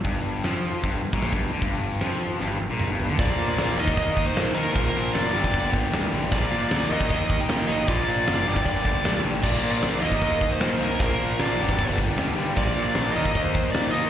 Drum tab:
CC |----------------|----------------|----------------|----------------|
HH |o-o-o-o-o-o-o-o-|o-o-o-o---------|o-o-o-o-o-o-o-o-|o-o-o-o-o-o-o-o-|
SD |----o-------o---|---oo---o-------|----o--o----o---|--o-o--o----o---|
T2 |----------------|------------o---|----------------|----------------|
FT |----------------|--------------o-|----------------|----------------|
BD |o-------o--o-o--|o---------------|o------oo-o-----|o------oo-o-----|

CC |----------------|----------------|x---------------|----------------|
HH |o-o-o-o-o-o-o-o-|o-o-o-o-o-o-o-o-|--o-o-o-o-o-o-o-|o-o-o-o-o-o-o-o-|
SD |--o-o--o----o---|----o-------o---|----o-------o---|--o-o--o----o---|
T2 |----------------|----------------|----------------|----------------|
FT |----------------|----------------|----------------|----------------|
BD |o------oo-o-----|o------oo-o-----|o------oo-o-----|o------oo-o-----|

CC |----------------|
HH |o-o-o-o-o-o-o-o-|
SD |--o-o-------o---|
T2 |----------------|
FT |----------------|
BD |o------oo-o-----|